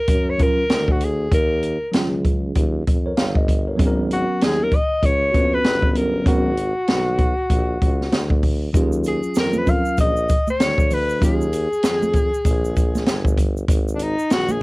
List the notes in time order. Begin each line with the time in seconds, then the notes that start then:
Already playing: A#4
0.08 F#2, kick, closed hi-hat
0.30 C#5
0.38 F#3 C#4 F4 A#4, kick, closed hi-hat
0.42 A#4
0.70 D2, snare, closed hi-hat
0.88 F#4, kick
1.01 G#4, closed hi-hat
1.32 D#2 A#4, kick, closed hi-hat
1.63 closed hi-hat
1.82 C#2
1.92 C#2 F#3 C#4 F4 G#4, snare, closed hi-hat
2.24 kick, closed hi-hat
2.55 D#2, kick, closed hi-hat
2.87 F2, kick, closed hi-hat
3.06 A#4 C#5
3.17 G1 C#5 F5, snare, closed hi-hat
3.35 D#5, kick
3.48 kick, closed hi-hat
3.68 A#4 C#5
3.77 G#1 F#3 B3 C#4 G#4, kick, closed hi-hat
3.87 A#4
4.11 F#4, closed hi-hat
4.29 D#2
4.41 D#2 G#4, snare, closed hi-hat
4.63 A#4
4.71 kick, closed hi-hat
4.75 D#5
5.02 C#2 C#5, kick, closed hi-hat
5.31 F2 A#3 C#4 F#4, kick, closed hi-hat
5.36 B3 B4
5.54 B4
5.64 G1, snare, closed hi-hat
5.83 kick
5.92 F#3 B3 B4, closed hi-hat
5.96 C#4 A#4
6.24 G#1 F#3 B3 C#4 F#4 A#4, kick, closed hi-hat
6.57 closed hi-hat
6.76 B1
6.88 B1, snare, closed hi-hat
7.19 kick, closed hi-hat
7.38 A#1
7.50 A#1, kick, closed hi-hat
7.82 C#2, kick, closed hi-hat
8.01 snare
8.11 D2, snare, closed hi-hat
8.30 kick
8.43 kick, open hi-hat
8.73 D#2 F#3 C#4 F4 G4, kick, closed hi-hat, shaker
8.83 G#4
8.92 shaker
9.04 G#4, closed hi-hat, shaker
9.23 F2, shaker
9.35 F2, snare, closed hi-hat, shaker
9.40 A#4
9.53 high conga, shaker
9.58 B4
9.65 F#3 C#4 F4 A#4, kick, closed hi-hat, low conga, shaker
9.70 F5
9.85 A#1, shaker
9.98 A#1 D#5, kick, closed hi-hat, shaker
10.17 shaker
10.29 kick, closed hi-hat, shaker
10.47 C#5, high conga, shaker
10.60 D2, snare, closed hi-hat, shaker
10.78 kick, shaker
10.91 B4, open hi-hat, low conga, shaker
11.09 shaker
11.20 D#2 F#3 C#4 F4 A#4, kick, closed hi-hat, shaker
11.24 G#4
11.41 shaker
11.53 closed hi-hat, shaker
11.72 F2, shaker
11.83 F2, snare, closed hi-hat, shaker
12.03 high conga, shaker
12.13 kick, closed hi-hat, low conga, shaker
12.34 A#1, shaker
12.45 A#1, kick, closed hi-hat, shaker
12.65 shaker
12.76 kick, closed hi-hat, shaker
12.95 snare, high conga, shaker
13.06 G1, snare, closed hi-hat, shaker
13.25 kick, shaker
13.37 kick, closed hi-hat, low conga, shaker
13.57 shaker
13.68 G#1, kick, closed hi-hat, shaker
13.88 shaker
13.95 D4
13.99 D#4, closed hi-hat, shaker
14.19 A#1, shaker
14.30 A#1 F#4, snare, closed hi-hat, shaker
14.49 G#4, high conga, shaker